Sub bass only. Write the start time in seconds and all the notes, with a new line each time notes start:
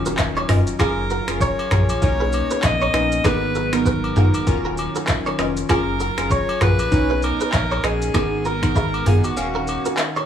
0.06 D#1
0.19 D#1
0.49 F1
0.80 F#1
1.28 F#1
1.71 A#1
2.02 B1
2.63 A#1
2.94 A#1
3.25 G#1
4.16 G#1
4.47 D#1
5.39 F1
5.69 F#1
6.18 F#1
6.61 A#1
6.92 B1
7.53 A#1
7.84 A#1
8.14 G#1
9.06 G#1
9.37 D#1